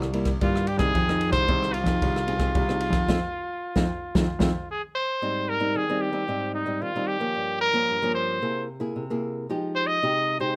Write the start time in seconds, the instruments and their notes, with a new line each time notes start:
Already playing: grand piano C2, nylon-string guitar C3 A#3 E4
0.02 cross-stick
0.13 nylon-string guitar G3 A#3 E4, ride
0.25 kick, cross-stick, ride
0.41 nylon-string guitar G2 G3 A#3 E4, grand piano G2, trumpet F4, kick, ride
0.56 cross-stick
0.67 trumpet G4, ride
0.77 grand piano C2, nylon-string guitar C4 D#4 G#4, trumpet G#4, kick, cross-stick, ride
0.95 grand piano F2, nylon-string guitar F3, kick, ride
1.09 nylon-string guitar C4 D#4 G#4, cross-stick
1.21 ride
1.30 grand piano C2, trumpet C5, kick, cross-stick, ride
1.48 grand piano C2, nylon-string guitar C3 C4 D#4 G#4, kick, ride
1.63 cross-stick
1.73 trumpet F4, ride
1.84 grand piano F2, nylon-string guitar C4 D#4 G#4, kick, cross-stick, ride
2.01 grand piano C2, nylon-string guitar F3, kick, ride
2.16 cross-stick
2.27 nylon-string guitar C4 D#4 G#4, ride
2.39 nylon-string guitar C4 D#4 G#4, kick, cross-stick, ride
2.55 grand piano C2, nylon-string guitar C3, kick, ride
2.69 nylon-string guitar C4 D#4 G#4, cross-stick
2.81 ride
2.90 grand piano F2, kick, cross-stick, ride
3.08 grand piano F2, nylon-string guitar C4 D#4 F4, kick, snare
3.76 grand piano F2, nylon-string guitar C4 D#4 F4, kick, snare
4.15 grand piano F2, nylon-string guitar C4 D#4 F4, kick, snare
4.39 grand piano F2, nylon-string guitar C4 D#4 F4, kick, snare
4.71 trumpet G#4
4.95 trumpet C5
5.22 nylon-string guitar G#2 G3 C4 D#4
5.49 trumpet A#4
5.60 nylon-string guitar G3 C4 D#4
5.75 nylon-string guitar D#3, trumpet G#4
5.89 nylon-string guitar G3 C4 D#4
6.01 trumpet G4
6.12 nylon-string guitar G3 C4 D#4
6.28 nylon-string guitar G#2 G3 C4 D#4
6.54 trumpet D#4
6.66 nylon-string guitar G3 C4 D#4
6.82 nylon-string guitar D#3, trumpet F4
6.96 nylon-string guitar G3 C4 D#4
7.07 trumpet G4
7.20 nylon-string guitar F3 A#3 C#4
7.35 nylon-string guitar G2
7.61 trumpet A#4
7.73 nylon-string guitar F3 A#3 C#4
7.89 nylon-string guitar G2
8.02 nylon-string guitar F3 A#3 C#4
8.14 trumpet C5
8.42 nylon-string guitar C3 A#3 E4 G#4
8.80 nylon-string guitar A#3 E4 G#4
8.96 nylon-string guitar C3
9.10 nylon-string guitar A#3 E4 G#4
9.49 nylon-string guitar F3 G#3 D#4 G4
9.75 trumpet C5
9.87 trumpet D#5
10.03 nylon-string guitar C3 G#3 D#4 G4
10.40 nylon-string guitar G#3 D#4 G4, trumpet C5